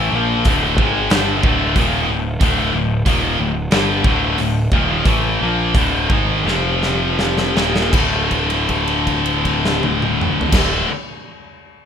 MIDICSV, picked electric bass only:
0, 0, Header, 1, 2, 480
1, 0, Start_track
1, 0, Tempo, 651466
1, 1767, Time_signature, 4, 2, 24, 8
1, 2730, Tempo, 677966
1, 4170, Tempo, 717703
1, 5130, Tempo, 761421
1, 8079, End_track
2, 0, Start_track
2, 0, Title_t, "Picked electric bass"
2, 0, Program_c, 0, 34
2, 0, Note_on_c, 0, 33, 91
2, 75, Note_off_c, 0, 33, 0
2, 88, Note_on_c, 0, 34, 86
2, 312, Note_off_c, 0, 34, 0
2, 335, Note_on_c, 0, 26, 91
2, 555, Note_off_c, 0, 26, 0
2, 572, Note_on_c, 0, 32, 88
2, 793, Note_off_c, 0, 32, 0
2, 816, Note_on_c, 0, 31, 86
2, 1036, Note_off_c, 0, 31, 0
2, 1056, Note_on_c, 0, 26, 99
2, 1275, Note_off_c, 0, 26, 0
2, 1293, Note_on_c, 0, 27, 88
2, 1513, Note_off_c, 0, 27, 0
2, 1533, Note_on_c, 0, 26, 74
2, 1753, Note_off_c, 0, 26, 0
2, 1773, Note_on_c, 0, 26, 87
2, 1993, Note_off_c, 0, 26, 0
2, 2013, Note_on_c, 0, 26, 74
2, 2234, Note_off_c, 0, 26, 0
2, 2251, Note_on_c, 0, 27, 89
2, 2474, Note_off_c, 0, 27, 0
2, 2499, Note_on_c, 0, 26, 75
2, 2720, Note_off_c, 0, 26, 0
2, 2744, Note_on_c, 0, 31, 89
2, 2956, Note_off_c, 0, 31, 0
2, 2969, Note_on_c, 0, 26, 88
2, 3188, Note_off_c, 0, 26, 0
2, 3213, Note_on_c, 0, 26, 75
2, 3430, Note_off_c, 0, 26, 0
2, 3446, Note_on_c, 0, 27, 84
2, 3668, Note_off_c, 0, 27, 0
2, 3681, Note_on_c, 0, 33, 85
2, 3908, Note_off_c, 0, 33, 0
2, 3937, Note_on_c, 0, 34, 81
2, 4160, Note_off_c, 0, 34, 0
2, 4174, Note_on_c, 0, 26, 85
2, 4392, Note_off_c, 0, 26, 0
2, 4411, Note_on_c, 0, 32, 85
2, 4630, Note_off_c, 0, 32, 0
2, 4646, Note_on_c, 0, 29, 85
2, 5342, Note_off_c, 0, 29, 0
2, 5368, Note_on_c, 0, 27, 77
2, 5589, Note_off_c, 0, 27, 0
2, 5605, Note_on_c, 0, 26, 77
2, 7158, Note_off_c, 0, 26, 0
2, 7242, Note_on_c, 0, 26, 79
2, 7443, Note_off_c, 0, 26, 0
2, 8079, End_track
0, 0, End_of_file